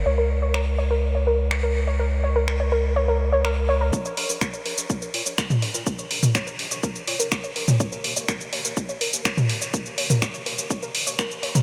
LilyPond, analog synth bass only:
\new Staff \with { instrumentName = "Analog synth bass" } { \clef bass \time 4/4 \key bes \minor \tempo 4 = 124 des,1~ | des,1 | r16 bes,,16 bes,,16 bes,,16 r16 bes,,16 bes,,16 bes,,16 r16 bes,,16 bes,16 bes,,16 r16 bes,,16 bes,,16 bes,16 | r16 bes,,16 bes,,16 bes,,16 r16 bes,,16 bes,,16 bes,,16 r16 bes,,16 bes,16 bes,,16 r16 bes,,16 bes,,16 bes,16 |
r16 ees,16 ees,16 ees,16 r16 ees,16 ees,16 ees,16 r16 ees,16 ees,,16 ees,16 r16 ees,16 ees,16 ees,,16 | r16 ees,16 ees,16 ees,16 r16 ees,16 ees,16 ees,16 r16 ees,16 ees,,16 ees,16 r16 ees,16 ees,16 r16 | }